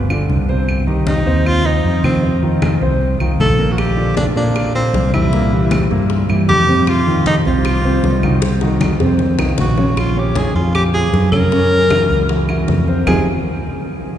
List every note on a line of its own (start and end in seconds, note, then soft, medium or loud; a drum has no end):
0.00 0.25 G1 loud
0.10 0.42 D3 medium
0.10 0.42 D4 medium
0.10 0.42 F4 medium
0.10 high conga soft
0.10 claves medium
0.29 1.20 C2 medium
0.29 high conga medium
0.49 0.80 C3 medium
0.49 0.81 C4 medium
0.49 0.81 C5 medium
0.49 high conga soft
0.68 high conga soft
0.68 claves medium
0.87 1.19 D#3 medium
0.87 1.19 D#4 medium
0.87 1.19 G4 medium
0.87 high conga soft
1.07 1.48 D#4 loud
1.07 high conga medium
1.26 1.80 D#2 medium
1.26 1.58 C3 medium
1.26 1.58 C4 medium
1.26 1.58 C5 medium
1.46 1.68 F4 loud
1.46 high conga soft
1.46 claves medium
1.64 1.96 C3 medium
1.64 1.97 C4 medium
1.64 2.04 D#4 medium
1.64 1.97 C5 medium
1.64 high conga soft
1.84 2.75 F2 medium
1.84 high conga soft
2.03 2.19 D#3 medium
2.03 2.40 C4 medium
2.03 2.20 D#4 medium
2.03 2.20 F4 medium
2.03 high conga medium
2.03 claves medium
2.23 2.39 C3 medium
2.23 2.39 C4 medium
2.23 2.39 C5 medium
2.23 high conga soft
2.42 2.74 D#3 medium
2.42 2.74 D#4 medium
2.42 2.74 F4 medium
2.42 high conga soft
2.62 high conga medium
2.62 claves medium
2.82 3.17 C2 medium
2.82 3.13 C3 medium
2.82 3.13 C4 medium
2.82 3.14 C5 medium
2.82 high conga soft
3.01 high conga soft
3.20 3.38 C2 medium
3.20 3.52 D#3 medium
3.20 3.52 D#4 medium
3.20 3.52 F4 medium
3.20 high conga soft
3.20 claves medium
3.39 4.30 A#1 medium
3.39 3.73 A4 loud
3.39 high conga medium
3.59 3.90 A#2 medium
3.59 3.90 A#3 medium
3.59 3.91 A#4 medium
3.59 high conga soft
3.72 3.80 F#4 medium
3.78 4.17 G4 loud
3.78 high bongo medium
3.78 high conga soft
3.78 claves medium
3.97 4.29 D3 medium
3.97 4.29 D4 medium
3.97 4.29 F4 medium
3.97 high conga soft
4.17 4.26 D4 medium
4.17 high bongo medium
4.17 high conga loud
4.36 4.90 A#2 medium
4.36 4.68 A#2 medium
4.36 4.68 A#3 medium
4.36 4.73 D4 medium
4.36 4.68 A#4 medium
4.36 high bongo soft
4.56 high bongo medium
4.56 high conga soft
4.56 claves medium
4.75 5.07 A#2 medium
4.75 5.07 A#3 medium
4.75 5.11 C4 medium
4.75 5.07 A#4 medium
4.75 high bongo soft
4.75 high conga soft
4.93 5.84 C2 medium
4.93 high bongo soft
4.93 low bongo medium
4.93 high conga soft
5.13 5.29 E3 medium
5.13 5.87 E4 medium
5.13 5.30 E4 medium
5.13 5.30 G4 medium
5.13 high bongo soft
5.13 high conga medium
5.13 claves medium
5.33 5.49 A#2 medium
5.33 5.49 A#3 medium
5.33 5.49 A#4 medium
5.33 high bongo medium
5.33 high conga soft
5.52 5.84 E3 medium
5.52 5.84 E4 medium
5.52 5.84 G4 medium
5.52 high conga soft
5.71 high bongo medium
5.71 high conga loud
5.71 claves medium
5.90 6.27 G2 loud
5.90 6.23 A#2 medium
5.90 6.23 A#3 medium
5.90 6.23 A#4 medium
5.90 high bongo soft
5.90 high conga soft
6.10 high bongo medium
6.10 high conga soft
6.29 6.47 G2 medium
6.29 6.61 E3 medium
6.29 6.61 E4 medium
6.29 6.62 G4 medium
6.29 high bongo soft
6.29 high conga soft
6.29 claves medium
6.49 7.39 F2 loud
6.49 6.90 G4 loud
6.49 high bongo soft
6.49 low bongo medium
6.49 high conga medium
6.68 7.00 C3 medium
6.68 7.00 C4 medium
6.68 7.00 C5 medium
6.68 high bongo soft
6.68 high conga soft
6.87 7.26 F4 medium
6.87 high bongo medium
6.87 high conga soft
6.87 claves medium
7.07 7.39 D#3 medium
7.07 7.39 D#4 medium
7.07 7.39 F4 medium
7.07 high conga soft
7.26 7.35 D#4 medium
7.26 high bongo medium
7.26 high conga medium
7.45 7.99 C2 loud
7.45 7.77 C3 medium
7.45 7.77 C4 medium
7.45 8.39 F4 medium
7.45 7.78 C5 medium
7.45 high bongo soft
7.65 high bongo medium
7.65 high conga soft
7.65 claves medium
7.84 8.16 C3 medium
7.84 8.16 C4 medium
7.84 8.16 C5 medium
7.84 high bongo soft
7.84 high conga soft
8.03 8.94 C2 medium
8.03 high bongo soft
8.03 low bongo medium
8.03 high conga soft
8.23 8.39 D#3 medium
8.23 8.39 D#4 medium
8.23 8.39 F#4 medium
8.23 high bongo soft
8.23 high conga medium
8.23 claves medium
8.42 8.58 C3 medium
8.42 8.58 C4 medium
8.42 8.59 C5 medium
8.42 high bongo medium
8.61 8.93 D#3 medium
8.61 8.93 D#4 medium
8.61 8.93 F#4 medium
8.61 high bongo medium
8.61 high conga soft
8.81 low bongo medium
8.81 high conga medium
8.81 claves medium
9.00 9.36 F2 medium
9.00 9.32 C3 medium
9.00 9.32 C4 medium
9.00 9.32 C5 medium
9.00 high bongo medium
9.00 high conga soft
9.19 low bongo medium
9.19 high conga soft
9.39 9.57 C2 medium
9.39 9.71 D#3 medium
9.39 9.71 D#4 medium
9.39 9.71 F4 medium
9.39 low bongo medium
9.39 high conga soft
9.39 claves medium
9.58 10.49 A#1 medium
9.58 10.01 F#4 medium
9.58 low bongo medium
9.58 high conga medium
9.77 9.93 C#3 medium
9.77 9.93 C#4 medium
9.77 9.94 C#5 medium
9.77 low bongo medium
9.77 high conga soft
9.97 10.20 F4 medium
9.97 high bongo medium
9.97 high conga soft
9.97 claves medium
10.16 10.48 C#3 medium
10.16 10.48 C#4 medium
10.16 10.39 G4 medium
10.16 10.48 C#5 medium
10.16 high conga soft
10.35 10.55 G#4 loud
10.35 high bongo medium
10.35 high conga medium
10.55 11.09 F2 medium
10.55 10.87 F3 medium
10.55 10.87 F4 medium
10.55 10.73 F4 medium
10.55 10.87 G#4 medium
10.55 high bongo soft
10.75 10.84 G4 medium
10.75 high bongo medium
10.75 high conga soft
10.75 claves medium
10.94 11.25 F3 medium
10.94 11.26 F4 medium
10.94 11.30 G#4 loud
10.94 11.26 G#4 medium
10.94 high bongo soft
10.94 high conga soft
11.13 12.04 F#2 medium
11.13 high bongo soft
11.13 low bongo medium
11.13 high conga soft
11.32 11.48 C#3 medium
11.32 11.49 C#4 medium
11.32 12.64 A#4 loud
11.32 11.49 C#5 medium
11.32 high bongo soft
11.32 high conga medium
11.32 claves medium
11.52 11.84 C#3 medium
11.52 11.84 C#4 medium
11.52 11.84 C#5 medium
11.52 high bongo medium
11.52 high conga soft
11.71 high conga soft
11.90 12.22 E3 medium
11.90 12.22 E4 medium
11.90 12.23 F#4 medium
11.90 high bongo medium
11.90 high conga loud
11.90 claves medium
12.10 12.64 C#2 medium
12.10 high bongo soft
12.10 high conga soft
12.29 12.45 E3 medium
12.29 12.45 E4 medium
12.29 12.45 F#4 medium
12.29 high bongo medium
12.29 high conga soft
12.49 12.81 E3 medium
12.49 12.81 E4 medium
12.49 12.81 F#4 medium
12.49 high bongo soft
12.49 high conga soft
12.49 claves medium
12.68 13.02 F2 medium
12.68 high bongo soft
12.68 low bongo medium
12.68 high conga medium
12.87 13.03 C3 medium
12.87 13.03 C4 medium
12.87 13.04 C5 medium
12.87 high bongo soft
12.87 high conga soft
13.06 13.25 F1 medium
13.06 13.25 F3 medium
13.06 13.25 C4 medium
13.06 13.25 D#4 medium
13.06 13.25 F4 medium
13.06 13.25 G4 medium
13.06 13.25 G#4 medium
13.06 low bongo medium
13.06 low conga medium
13.06 claves loud